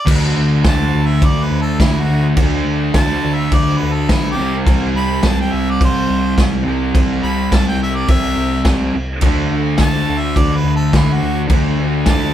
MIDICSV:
0, 0, Header, 1, 5, 480
1, 0, Start_track
1, 0, Tempo, 571429
1, 71, Time_signature, 4, 2, 24, 8
1, 10363, End_track
2, 0, Start_track
2, 0, Title_t, "Harmonica"
2, 0, Program_c, 0, 22
2, 574, Note_on_c, 0, 81, 100
2, 891, Note_on_c, 0, 76, 91
2, 904, Note_off_c, 0, 81, 0
2, 1052, Note_on_c, 0, 74, 92
2, 1065, Note_off_c, 0, 76, 0
2, 1205, Note_on_c, 0, 71, 82
2, 1217, Note_off_c, 0, 74, 0
2, 1354, Note_off_c, 0, 71, 0
2, 1360, Note_on_c, 0, 69, 90
2, 1512, Note_off_c, 0, 69, 0
2, 1518, Note_on_c, 0, 64, 91
2, 1681, Note_on_c, 0, 66, 109
2, 1694, Note_off_c, 0, 64, 0
2, 1911, Note_off_c, 0, 66, 0
2, 2484, Note_on_c, 0, 81, 96
2, 2816, Note_on_c, 0, 76, 97
2, 2829, Note_off_c, 0, 81, 0
2, 2961, Note_off_c, 0, 76, 0
2, 2969, Note_on_c, 0, 74, 87
2, 3169, Note_on_c, 0, 71, 79
2, 3181, Note_off_c, 0, 74, 0
2, 3297, Note_on_c, 0, 69, 82
2, 3309, Note_off_c, 0, 71, 0
2, 3441, Note_off_c, 0, 69, 0
2, 3457, Note_on_c, 0, 64, 84
2, 3601, Note_off_c, 0, 64, 0
2, 3622, Note_on_c, 0, 67, 95
2, 3841, Note_off_c, 0, 67, 0
2, 4173, Note_on_c, 0, 83, 115
2, 4419, Note_on_c, 0, 81, 95
2, 4432, Note_off_c, 0, 83, 0
2, 4519, Note_off_c, 0, 81, 0
2, 4542, Note_on_c, 0, 79, 83
2, 4651, Note_on_c, 0, 76, 93
2, 4664, Note_off_c, 0, 79, 0
2, 4790, Note_on_c, 0, 74, 94
2, 4802, Note_off_c, 0, 76, 0
2, 4885, Note_off_c, 0, 74, 0
2, 4912, Note_on_c, 0, 72, 107
2, 5359, Note_off_c, 0, 72, 0
2, 6077, Note_on_c, 0, 83, 93
2, 6336, Note_on_c, 0, 81, 83
2, 6349, Note_off_c, 0, 83, 0
2, 6437, Note_off_c, 0, 81, 0
2, 6453, Note_on_c, 0, 79, 85
2, 6556, Note_off_c, 0, 79, 0
2, 6577, Note_on_c, 0, 76, 94
2, 6683, Note_on_c, 0, 74, 88
2, 6695, Note_off_c, 0, 76, 0
2, 6790, Note_off_c, 0, 74, 0
2, 6799, Note_on_c, 0, 76, 106
2, 7262, Note_off_c, 0, 76, 0
2, 8243, Note_on_c, 0, 81, 100
2, 8566, Note_on_c, 0, 76, 89
2, 8579, Note_off_c, 0, 81, 0
2, 8722, Note_on_c, 0, 74, 92
2, 8734, Note_off_c, 0, 76, 0
2, 8875, Note_on_c, 0, 71, 80
2, 8888, Note_off_c, 0, 74, 0
2, 9029, Note_off_c, 0, 71, 0
2, 9040, Note_on_c, 0, 69, 82
2, 9191, Note_off_c, 0, 69, 0
2, 9208, Note_on_c, 0, 64, 90
2, 9348, Note_on_c, 0, 66, 115
2, 9361, Note_off_c, 0, 64, 0
2, 9583, Note_off_c, 0, 66, 0
2, 10141, Note_on_c, 0, 81, 96
2, 10363, Note_off_c, 0, 81, 0
2, 10363, End_track
3, 0, Start_track
3, 0, Title_t, "Distorted electric guitar"
3, 0, Program_c, 1, 30
3, 51, Note_on_c, 1, 50, 98
3, 68, Note_on_c, 1, 57, 99
3, 91, Note_on_c, 1, 62, 101
3, 1969, Note_off_c, 1, 50, 0
3, 1978, Note_off_c, 1, 57, 0
3, 1989, Note_off_c, 1, 62, 0
3, 1990, Note_on_c, 1, 50, 97
3, 2010, Note_on_c, 1, 57, 94
3, 2031, Note_on_c, 1, 62, 115
3, 3658, Note_off_c, 1, 50, 0
3, 3665, Note_on_c, 1, 48, 92
3, 3668, Note_off_c, 1, 57, 0
3, 3678, Note_off_c, 1, 62, 0
3, 3696, Note_on_c, 1, 55, 100
3, 3713, Note_on_c, 1, 60, 102
3, 5565, Note_off_c, 1, 48, 0
3, 5575, Note_on_c, 1, 48, 99
3, 5588, Note_off_c, 1, 55, 0
3, 5598, Note_on_c, 1, 55, 99
3, 5599, Note_off_c, 1, 60, 0
3, 5619, Note_on_c, 1, 60, 106
3, 7489, Note_off_c, 1, 48, 0
3, 7501, Note_off_c, 1, 55, 0
3, 7511, Note_off_c, 1, 60, 0
3, 7743, Note_on_c, 1, 50, 96
3, 7771, Note_on_c, 1, 57, 95
3, 7786, Note_on_c, 1, 62, 100
3, 9628, Note_off_c, 1, 50, 0
3, 9638, Note_on_c, 1, 50, 93
3, 9655, Note_off_c, 1, 57, 0
3, 9665, Note_on_c, 1, 57, 107
3, 9674, Note_off_c, 1, 62, 0
3, 9687, Note_on_c, 1, 62, 107
3, 10363, Note_off_c, 1, 50, 0
3, 10363, Note_off_c, 1, 57, 0
3, 10363, Note_off_c, 1, 62, 0
3, 10363, End_track
4, 0, Start_track
4, 0, Title_t, "Analog synth bass"
4, 0, Program_c, 2, 38
4, 57, Note_on_c, 2, 38, 106
4, 283, Note_off_c, 2, 38, 0
4, 314, Note_on_c, 2, 38, 96
4, 533, Note_off_c, 2, 38, 0
4, 545, Note_on_c, 2, 38, 102
4, 768, Note_off_c, 2, 38, 0
4, 798, Note_on_c, 2, 38, 89
4, 1016, Note_off_c, 2, 38, 0
4, 1026, Note_on_c, 2, 38, 95
4, 1249, Note_off_c, 2, 38, 0
4, 1270, Note_on_c, 2, 38, 101
4, 1491, Note_off_c, 2, 38, 0
4, 1511, Note_on_c, 2, 38, 92
4, 1732, Note_off_c, 2, 38, 0
4, 1755, Note_on_c, 2, 38, 92
4, 1974, Note_off_c, 2, 38, 0
4, 1988, Note_on_c, 2, 38, 98
4, 2211, Note_off_c, 2, 38, 0
4, 2219, Note_on_c, 2, 38, 97
4, 2446, Note_off_c, 2, 38, 0
4, 2468, Note_on_c, 2, 38, 98
4, 2691, Note_off_c, 2, 38, 0
4, 2724, Note_on_c, 2, 38, 89
4, 2939, Note_off_c, 2, 38, 0
4, 2951, Note_on_c, 2, 38, 107
4, 3172, Note_off_c, 2, 38, 0
4, 3215, Note_on_c, 2, 38, 93
4, 3426, Note_off_c, 2, 38, 0
4, 3442, Note_on_c, 2, 35, 98
4, 3658, Note_off_c, 2, 35, 0
4, 3689, Note_on_c, 2, 36, 92
4, 3902, Note_off_c, 2, 36, 0
4, 3919, Note_on_c, 2, 36, 105
4, 4137, Note_off_c, 2, 36, 0
4, 4150, Note_on_c, 2, 36, 94
4, 4372, Note_off_c, 2, 36, 0
4, 4406, Note_on_c, 2, 36, 105
4, 4620, Note_off_c, 2, 36, 0
4, 4649, Note_on_c, 2, 36, 89
4, 4862, Note_off_c, 2, 36, 0
4, 4879, Note_on_c, 2, 36, 98
4, 5097, Note_off_c, 2, 36, 0
4, 5125, Note_on_c, 2, 36, 95
4, 5340, Note_off_c, 2, 36, 0
4, 5356, Note_on_c, 2, 36, 96
4, 5575, Note_off_c, 2, 36, 0
4, 5595, Note_on_c, 2, 36, 84
4, 5815, Note_off_c, 2, 36, 0
4, 5835, Note_on_c, 2, 36, 96
4, 6055, Note_off_c, 2, 36, 0
4, 6080, Note_on_c, 2, 36, 94
4, 6297, Note_off_c, 2, 36, 0
4, 6319, Note_on_c, 2, 36, 95
4, 6532, Note_off_c, 2, 36, 0
4, 6537, Note_on_c, 2, 36, 80
4, 6765, Note_off_c, 2, 36, 0
4, 6791, Note_on_c, 2, 36, 106
4, 7012, Note_off_c, 2, 36, 0
4, 7027, Note_on_c, 2, 36, 97
4, 7250, Note_off_c, 2, 36, 0
4, 7266, Note_on_c, 2, 36, 94
4, 7489, Note_off_c, 2, 36, 0
4, 7517, Note_on_c, 2, 36, 88
4, 7735, Note_off_c, 2, 36, 0
4, 7751, Note_on_c, 2, 38, 102
4, 7972, Note_off_c, 2, 38, 0
4, 7988, Note_on_c, 2, 38, 100
4, 8210, Note_off_c, 2, 38, 0
4, 8223, Note_on_c, 2, 38, 99
4, 8447, Note_off_c, 2, 38, 0
4, 8477, Note_on_c, 2, 38, 89
4, 8695, Note_off_c, 2, 38, 0
4, 8711, Note_on_c, 2, 38, 103
4, 8932, Note_off_c, 2, 38, 0
4, 8936, Note_on_c, 2, 38, 96
4, 9164, Note_off_c, 2, 38, 0
4, 9181, Note_on_c, 2, 38, 95
4, 9406, Note_off_c, 2, 38, 0
4, 9428, Note_on_c, 2, 38, 82
4, 9650, Note_off_c, 2, 38, 0
4, 9661, Note_on_c, 2, 38, 96
4, 9886, Note_off_c, 2, 38, 0
4, 9902, Note_on_c, 2, 38, 105
4, 10127, Note_off_c, 2, 38, 0
4, 10135, Note_on_c, 2, 38, 105
4, 10363, Note_off_c, 2, 38, 0
4, 10363, End_track
5, 0, Start_track
5, 0, Title_t, "Drums"
5, 59, Note_on_c, 9, 36, 124
5, 65, Note_on_c, 9, 49, 127
5, 65, Note_on_c, 9, 57, 65
5, 143, Note_off_c, 9, 36, 0
5, 149, Note_off_c, 9, 49, 0
5, 149, Note_off_c, 9, 57, 0
5, 541, Note_on_c, 9, 38, 115
5, 542, Note_on_c, 9, 36, 117
5, 542, Note_on_c, 9, 57, 58
5, 625, Note_off_c, 9, 38, 0
5, 626, Note_off_c, 9, 36, 0
5, 626, Note_off_c, 9, 57, 0
5, 1024, Note_on_c, 9, 36, 123
5, 1027, Note_on_c, 9, 57, 61
5, 1108, Note_off_c, 9, 36, 0
5, 1111, Note_off_c, 9, 57, 0
5, 1510, Note_on_c, 9, 36, 119
5, 1512, Note_on_c, 9, 38, 114
5, 1513, Note_on_c, 9, 57, 66
5, 1594, Note_off_c, 9, 36, 0
5, 1596, Note_off_c, 9, 38, 0
5, 1597, Note_off_c, 9, 57, 0
5, 1987, Note_on_c, 9, 57, 68
5, 1991, Note_on_c, 9, 36, 121
5, 2071, Note_off_c, 9, 57, 0
5, 2075, Note_off_c, 9, 36, 0
5, 2470, Note_on_c, 9, 38, 112
5, 2471, Note_on_c, 9, 57, 67
5, 2473, Note_on_c, 9, 36, 108
5, 2554, Note_off_c, 9, 38, 0
5, 2555, Note_off_c, 9, 57, 0
5, 2557, Note_off_c, 9, 36, 0
5, 2954, Note_on_c, 9, 57, 65
5, 2956, Note_on_c, 9, 36, 123
5, 3038, Note_off_c, 9, 57, 0
5, 3040, Note_off_c, 9, 36, 0
5, 3437, Note_on_c, 9, 38, 110
5, 3438, Note_on_c, 9, 57, 64
5, 3439, Note_on_c, 9, 36, 113
5, 3521, Note_off_c, 9, 38, 0
5, 3522, Note_off_c, 9, 57, 0
5, 3523, Note_off_c, 9, 36, 0
5, 3919, Note_on_c, 9, 36, 127
5, 3925, Note_on_c, 9, 57, 71
5, 4003, Note_off_c, 9, 36, 0
5, 4009, Note_off_c, 9, 57, 0
5, 4392, Note_on_c, 9, 38, 112
5, 4393, Note_on_c, 9, 57, 59
5, 4398, Note_on_c, 9, 36, 112
5, 4476, Note_off_c, 9, 38, 0
5, 4477, Note_off_c, 9, 57, 0
5, 4482, Note_off_c, 9, 36, 0
5, 4879, Note_on_c, 9, 36, 121
5, 4884, Note_on_c, 9, 57, 67
5, 4963, Note_off_c, 9, 36, 0
5, 4968, Note_off_c, 9, 57, 0
5, 5357, Note_on_c, 9, 36, 105
5, 5359, Note_on_c, 9, 38, 105
5, 5360, Note_on_c, 9, 57, 59
5, 5441, Note_off_c, 9, 36, 0
5, 5443, Note_off_c, 9, 38, 0
5, 5444, Note_off_c, 9, 57, 0
5, 5835, Note_on_c, 9, 36, 123
5, 5838, Note_on_c, 9, 57, 67
5, 5919, Note_off_c, 9, 36, 0
5, 5922, Note_off_c, 9, 57, 0
5, 6317, Note_on_c, 9, 36, 110
5, 6318, Note_on_c, 9, 38, 110
5, 6319, Note_on_c, 9, 57, 68
5, 6401, Note_off_c, 9, 36, 0
5, 6402, Note_off_c, 9, 38, 0
5, 6403, Note_off_c, 9, 57, 0
5, 6790, Note_on_c, 9, 57, 68
5, 6793, Note_on_c, 9, 36, 120
5, 6874, Note_off_c, 9, 57, 0
5, 6877, Note_off_c, 9, 36, 0
5, 7264, Note_on_c, 9, 38, 115
5, 7265, Note_on_c, 9, 57, 63
5, 7267, Note_on_c, 9, 36, 116
5, 7348, Note_off_c, 9, 38, 0
5, 7349, Note_off_c, 9, 57, 0
5, 7351, Note_off_c, 9, 36, 0
5, 7736, Note_on_c, 9, 57, 72
5, 7747, Note_on_c, 9, 36, 127
5, 7820, Note_off_c, 9, 57, 0
5, 7831, Note_off_c, 9, 36, 0
5, 8213, Note_on_c, 9, 38, 117
5, 8214, Note_on_c, 9, 57, 63
5, 8222, Note_on_c, 9, 36, 104
5, 8297, Note_off_c, 9, 38, 0
5, 8298, Note_off_c, 9, 57, 0
5, 8306, Note_off_c, 9, 36, 0
5, 8704, Note_on_c, 9, 36, 109
5, 8707, Note_on_c, 9, 57, 61
5, 8788, Note_off_c, 9, 36, 0
5, 8791, Note_off_c, 9, 57, 0
5, 9184, Note_on_c, 9, 36, 106
5, 9185, Note_on_c, 9, 38, 116
5, 9186, Note_on_c, 9, 57, 56
5, 9268, Note_off_c, 9, 36, 0
5, 9269, Note_off_c, 9, 38, 0
5, 9270, Note_off_c, 9, 57, 0
5, 9656, Note_on_c, 9, 57, 69
5, 9659, Note_on_c, 9, 36, 127
5, 9740, Note_off_c, 9, 57, 0
5, 9743, Note_off_c, 9, 36, 0
5, 10129, Note_on_c, 9, 38, 117
5, 10130, Note_on_c, 9, 57, 63
5, 10136, Note_on_c, 9, 36, 112
5, 10213, Note_off_c, 9, 38, 0
5, 10214, Note_off_c, 9, 57, 0
5, 10220, Note_off_c, 9, 36, 0
5, 10363, End_track
0, 0, End_of_file